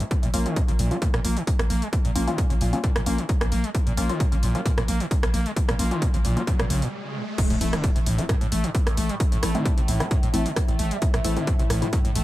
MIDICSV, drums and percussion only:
0, 0, Header, 1, 2, 480
1, 0, Start_track
1, 0, Tempo, 454545
1, 116, Time_signature, 4, 2, 24, 8
1, 12923, End_track
2, 0, Start_track
2, 0, Title_t, "Drums"
2, 3, Note_on_c, 9, 42, 55
2, 108, Note_off_c, 9, 42, 0
2, 116, Note_on_c, 9, 36, 110
2, 116, Note_on_c, 9, 42, 84
2, 221, Note_off_c, 9, 36, 0
2, 221, Note_off_c, 9, 42, 0
2, 243, Note_on_c, 9, 42, 52
2, 348, Note_off_c, 9, 42, 0
2, 355, Note_on_c, 9, 46, 105
2, 461, Note_off_c, 9, 46, 0
2, 483, Note_on_c, 9, 42, 49
2, 589, Note_off_c, 9, 42, 0
2, 595, Note_on_c, 9, 36, 118
2, 596, Note_on_c, 9, 42, 88
2, 701, Note_off_c, 9, 36, 0
2, 701, Note_off_c, 9, 42, 0
2, 723, Note_on_c, 9, 42, 48
2, 829, Note_off_c, 9, 42, 0
2, 836, Note_on_c, 9, 46, 91
2, 941, Note_off_c, 9, 46, 0
2, 963, Note_on_c, 9, 42, 45
2, 1068, Note_off_c, 9, 42, 0
2, 1075, Note_on_c, 9, 42, 83
2, 1076, Note_on_c, 9, 36, 119
2, 1181, Note_off_c, 9, 36, 0
2, 1181, Note_off_c, 9, 42, 0
2, 1202, Note_on_c, 9, 37, 80
2, 1202, Note_on_c, 9, 42, 48
2, 1308, Note_off_c, 9, 37, 0
2, 1308, Note_off_c, 9, 42, 0
2, 1315, Note_on_c, 9, 46, 106
2, 1421, Note_off_c, 9, 46, 0
2, 1443, Note_on_c, 9, 42, 52
2, 1548, Note_off_c, 9, 42, 0
2, 1556, Note_on_c, 9, 36, 117
2, 1556, Note_on_c, 9, 42, 88
2, 1661, Note_off_c, 9, 36, 0
2, 1661, Note_off_c, 9, 42, 0
2, 1683, Note_on_c, 9, 37, 83
2, 1683, Note_on_c, 9, 42, 51
2, 1789, Note_off_c, 9, 37, 0
2, 1789, Note_off_c, 9, 42, 0
2, 1796, Note_on_c, 9, 46, 93
2, 1902, Note_off_c, 9, 46, 0
2, 1923, Note_on_c, 9, 42, 52
2, 2029, Note_off_c, 9, 42, 0
2, 2036, Note_on_c, 9, 36, 111
2, 2036, Note_on_c, 9, 42, 91
2, 2141, Note_off_c, 9, 36, 0
2, 2141, Note_off_c, 9, 42, 0
2, 2163, Note_on_c, 9, 42, 51
2, 2269, Note_off_c, 9, 42, 0
2, 2276, Note_on_c, 9, 46, 106
2, 2382, Note_off_c, 9, 46, 0
2, 2403, Note_on_c, 9, 42, 47
2, 2509, Note_off_c, 9, 42, 0
2, 2516, Note_on_c, 9, 36, 122
2, 2516, Note_on_c, 9, 42, 90
2, 2621, Note_off_c, 9, 36, 0
2, 2621, Note_off_c, 9, 42, 0
2, 2643, Note_on_c, 9, 42, 49
2, 2748, Note_off_c, 9, 42, 0
2, 2755, Note_on_c, 9, 46, 87
2, 2861, Note_off_c, 9, 46, 0
2, 2883, Note_on_c, 9, 42, 47
2, 2988, Note_off_c, 9, 42, 0
2, 2995, Note_on_c, 9, 42, 82
2, 2996, Note_on_c, 9, 36, 114
2, 3101, Note_off_c, 9, 36, 0
2, 3101, Note_off_c, 9, 42, 0
2, 3123, Note_on_c, 9, 37, 84
2, 3123, Note_on_c, 9, 42, 50
2, 3228, Note_off_c, 9, 37, 0
2, 3228, Note_off_c, 9, 42, 0
2, 3235, Note_on_c, 9, 46, 104
2, 3341, Note_off_c, 9, 46, 0
2, 3362, Note_on_c, 9, 42, 52
2, 3468, Note_off_c, 9, 42, 0
2, 3475, Note_on_c, 9, 42, 86
2, 3476, Note_on_c, 9, 36, 123
2, 3581, Note_off_c, 9, 42, 0
2, 3582, Note_off_c, 9, 36, 0
2, 3603, Note_on_c, 9, 37, 83
2, 3603, Note_on_c, 9, 42, 51
2, 3708, Note_off_c, 9, 37, 0
2, 3708, Note_off_c, 9, 42, 0
2, 3716, Note_on_c, 9, 46, 86
2, 3822, Note_off_c, 9, 46, 0
2, 3844, Note_on_c, 9, 42, 52
2, 3949, Note_off_c, 9, 42, 0
2, 3956, Note_on_c, 9, 36, 107
2, 3956, Note_on_c, 9, 42, 91
2, 4062, Note_off_c, 9, 36, 0
2, 4062, Note_off_c, 9, 42, 0
2, 4084, Note_on_c, 9, 42, 54
2, 4190, Note_off_c, 9, 42, 0
2, 4197, Note_on_c, 9, 46, 105
2, 4302, Note_off_c, 9, 46, 0
2, 4324, Note_on_c, 9, 42, 51
2, 4429, Note_off_c, 9, 42, 0
2, 4436, Note_on_c, 9, 36, 122
2, 4437, Note_on_c, 9, 42, 88
2, 4542, Note_off_c, 9, 36, 0
2, 4542, Note_off_c, 9, 42, 0
2, 4564, Note_on_c, 9, 42, 53
2, 4669, Note_off_c, 9, 42, 0
2, 4677, Note_on_c, 9, 46, 88
2, 4782, Note_off_c, 9, 46, 0
2, 4804, Note_on_c, 9, 42, 49
2, 4910, Note_off_c, 9, 42, 0
2, 4916, Note_on_c, 9, 36, 111
2, 4917, Note_on_c, 9, 42, 89
2, 5022, Note_off_c, 9, 36, 0
2, 5022, Note_off_c, 9, 42, 0
2, 5044, Note_on_c, 9, 37, 81
2, 5044, Note_on_c, 9, 42, 51
2, 5150, Note_off_c, 9, 37, 0
2, 5150, Note_off_c, 9, 42, 0
2, 5157, Note_on_c, 9, 46, 97
2, 5262, Note_off_c, 9, 46, 0
2, 5284, Note_on_c, 9, 42, 51
2, 5390, Note_off_c, 9, 42, 0
2, 5396, Note_on_c, 9, 36, 118
2, 5397, Note_on_c, 9, 42, 89
2, 5502, Note_off_c, 9, 36, 0
2, 5503, Note_off_c, 9, 42, 0
2, 5524, Note_on_c, 9, 37, 88
2, 5524, Note_on_c, 9, 42, 53
2, 5630, Note_off_c, 9, 37, 0
2, 5630, Note_off_c, 9, 42, 0
2, 5638, Note_on_c, 9, 46, 88
2, 5743, Note_off_c, 9, 46, 0
2, 5765, Note_on_c, 9, 42, 53
2, 5870, Note_off_c, 9, 42, 0
2, 5876, Note_on_c, 9, 36, 115
2, 5877, Note_on_c, 9, 42, 101
2, 5982, Note_off_c, 9, 36, 0
2, 5983, Note_off_c, 9, 42, 0
2, 6005, Note_on_c, 9, 37, 89
2, 6005, Note_on_c, 9, 42, 53
2, 6110, Note_off_c, 9, 37, 0
2, 6110, Note_off_c, 9, 42, 0
2, 6117, Note_on_c, 9, 46, 106
2, 6222, Note_off_c, 9, 46, 0
2, 6244, Note_on_c, 9, 42, 52
2, 6350, Note_off_c, 9, 42, 0
2, 6356, Note_on_c, 9, 36, 120
2, 6357, Note_on_c, 9, 42, 96
2, 6462, Note_off_c, 9, 36, 0
2, 6462, Note_off_c, 9, 42, 0
2, 6484, Note_on_c, 9, 42, 55
2, 6589, Note_off_c, 9, 42, 0
2, 6597, Note_on_c, 9, 46, 90
2, 6702, Note_off_c, 9, 46, 0
2, 6725, Note_on_c, 9, 42, 50
2, 6830, Note_off_c, 9, 42, 0
2, 6836, Note_on_c, 9, 36, 110
2, 6836, Note_on_c, 9, 42, 90
2, 6942, Note_off_c, 9, 36, 0
2, 6942, Note_off_c, 9, 42, 0
2, 6964, Note_on_c, 9, 37, 83
2, 6964, Note_on_c, 9, 42, 52
2, 7070, Note_off_c, 9, 37, 0
2, 7070, Note_off_c, 9, 42, 0
2, 7077, Note_on_c, 9, 46, 106
2, 7182, Note_off_c, 9, 46, 0
2, 7204, Note_on_c, 9, 42, 55
2, 7310, Note_off_c, 9, 42, 0
2, 7796, Note_on_c, 9, 36, 116
2, 7796, Note_on_c, 9, 42, 100
2, 7796, Note_on_c, 9, 49, 100
2, 7902, Note_off_c, 9, 36, 0
2, 7902, Note_off_c, 9, 42, 0
2, 7902, Note_off_c, 9, 49, 0
2, 7923, Note_on_c, 9, 42, 57
2, 8029, Note_off_c, 9, 42, 0
2, 8036, Note_on_c, 9, 46, 112
2, 8141, Note_off_c, 9, 46, 0
2, 8163, Note_on_c, 9, 37, 65
2, 8163, Note_on_c, 9, 42, 54
2, 8269, Note_off_c, 9, 37, 0
2, 8269, Note_off_c, 9, 42, 0
2, 8276, Note_on_c, 9, 36, 124
2, 8276, Note_on_c, 9, 42, 96
2, 8381, Note_off_c, 9, 42, 0
2, 8382, Note_off_c, 9, 36, 0
2, 8403, Note_on_c, 9, 42, 56
2, 8509, Note_off_c, 9, 42, 0
2, 8515, Note_on_c, 9, 46, 94
2, 8621, Note_off_c, 9, 46, 0
2, 8643, Note_on_c, 9, 42, 52
2, 8748, Note_off_c, 9, 42, 0
2, 8756, Note_on_c, 9, 36, 120
2, 8756, Note_on_c, 9, 37, 63
2, 8756, Note_on_c, 9, 42, 92
2, 8861, Note_off_c, 9, 36, 0
2, 8862, Note_off_c, 9, 37, 0
2, 8862, Note_off_c, 9, 42, 0
2, 8883, Note_on_c, 9, 42, 53
2, 8989, Note_off_c, 9, 42, 0
2, 8996, Note_on_c, 9, 46, 115
2, 9102, Note_off_c, 9, 46, 0
2, 9123, Note_on_c, 9, 42, 57
2, 9229, Note_off_c, 9, 42, 0
2, 9235, Note_on_c, 9, 42, 93
2, 9236, Note_on_c, 9, 36, 119
2, 9341, Note_off_c, 9, 36, 0
2, 9341, Note_off_c, 9, 42, 0
2, 9363, Note_on_c, 9, 37, 68
2, 9363, Note_on_c, 9, 42, 56
2, 9469, Note_off_c, 9, 37, 0
2, 9469, Note_off_c, 9, 42, 0
2, 9476, Note_on_c, 9, 46, 96
2, 9582, Note_off_c, 9, 46, 0
2, 9603, Note_on_c, 9, 42, 55
2, 9709, Note_off_c, 9, 42, 0
2, 9716, Note_on_c, 9, 36, 125
2, 9716, Note_on_c, 9, 42, 98
2, 9821, Note_off_c, 9, 36, 0
2, 9822, Note_off_c, 9, 42, 0
2, 9843, Note_on_c, 9, 42, 60
2, 9949, Note_off_c, 9, 42, 0
2, 9955, Note_on_c, 9, 37, 65
2, 9955, Note_on_c, 9, 46, 115
2, 10061, Note_off_c, 9, 37, 0
2, 10061, Note_off_c, 9, 46, 0
2, 10083, Note_on_c, 9, 42, 54
2, 10189, Note_off_c, 9, 42, 0
2, 10196, Note_on_c, 9, 36, 127
2, 10196, Note_on_c, 9, 42, 93
2, 10301, Note_off_c, 9, 36, 0
2, 10302, Note_off_c, 9, 42, 0
2, 10324, Note_on_c, 9, 42, 56
2, 10429, Note_off_c, 9, 42, 0
2, 10436, Note_on_c, 9, 46, 96
2, 10541, Note_off_c, 9, 46, 0
2, 10563, Note_on_c, 9, 37, 61
2, 10563, Note_on_c, 9, 42, 55
2, 10669, Note_off_c, 9, 37, 0
2, 10669, Note_off_c, 9, 42, 0
2, 10676, Note_on_c, 9, 36, 127
2, 10676, Note_on_c, 9, 42, 91
2, 10782, Note_off_c, 9, 36, 0
2, 10782, Note_off_c, 9, 42, 0
2, 10804, Note_on_c, 9, 42, 55
2, 10909, Note_off_c, 9, 42, 0
2, 10916, Note_on_c, 9, 46, 111
2, 11021, Note_off_c, 9, 46, 0
2, 11043, Note_on_c, 9, 42, 59
2, 11149, Note_off_c, 9, 42, 0
2, 11156, Note_on_c, 9, 36, 127
2, 11156, Note_on_c, 9, 37, 62
2, 11156, Note_on_c, 9, 42, 97
2, 11262, Note_off_c, 9, 36, 0
2, 11262, Note_off_c, 9, 37, 0
2, 11262, Note_off_c, 9, 42, 0
2, 11283, Note_on_c, 9, 42, 55
2, 11388, Note_off_c, 9, 42, 0
2, 11395, Note_on_c, 9, 46, 93
2, 11501, Note_off_c, 9, 46, 0
2, 11523, Note_on_c, 9, 42, 60
2, 11628, Note_off_c, 9, 42, 0
2, 11635, Note_on_c, 9, 42, 98
2, 11636, Note_on_c, 9, 36, 127
2, 11741, Note_off_c, 9, 42, 0
2, 11742, Note_off_c, 9, 36, 0
2, 11762, Note_on_c, 9, 37, 65
2, 11762, Note_on_c, 9, 42, 56
2, 11868, Note_off_c, 9, 37, 0
2, 11868, Note_off_c, 9, 42, 0
2, 11874, Note_on_c, 9, 46, 118
2, 11980, Note_off_c, 9, 46, 0
2, 12002, Note_on_c, 9, 42, 52
2, 12108, Note_off_c, 9, 42, 0
2, 12116, Note_on_c, 9, 36, 127
2, 12116, Note_on_c, 9, 42, 91
2, 12221, Note_off_c, 9, 42, 0
2, 12222, Note_off_c, 9, 36, 0
2, 12243, Note_on_c, 9, 42, 56
2, 12349, Note_off_c, 9, 42, 0
2, 12356, Note_on_c, 9, 37, 64
2, 12356, Note_on_c, 9, 46, 95
2, 12461, Note_off_c, 9, 37, 0
2, 12461, Note_off_c, 9, 46, 0
2, 12483, Note_on_c, 9, 42, 50
2, 12588, Note_off_c, 9, 42, 0
2, 12596, Note_on_c, 9, 36, 127
2, 12596, Note_on_c, 9, 42, 93
2, 12701, Note_off_c, 9, 42, 0
2, 12702, Note_off_c, 9, 36, 0
2, 12723, Note_on_c, 9, 42, 55
2, 12829, Note_off_c, 9, 42, 0
2, 12835, Note_on_c, 9, 46, 113
2, 12923, Note_off_c, 9, 46, 0
2, 12923, End_track
0, 0, End_of_file